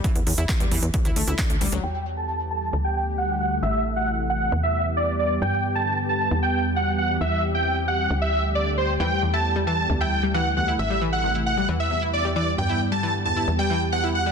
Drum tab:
HH |xxoxxxoxxxoxxxox|----------------|----------------|----------------|
CP |----x-------x---|----------------|----------------|----------------|
BD |o---o---o---o---|----------------|----------------|----------------|

HH |----------------|----------------|----------------|----------------|
CP |----------------|----------------|----------------|----------------|
BD |----------------|----------------|----------------|----------------|